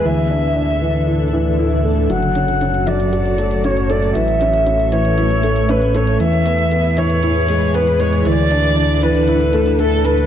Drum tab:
HH |----------------|xxxxxxxxxxxxxxxx|xxxxxxxxxxxxxxxx|xxxxxxxxxxxxxxxx|

HH |xxxxxxxxxxxxxxxx|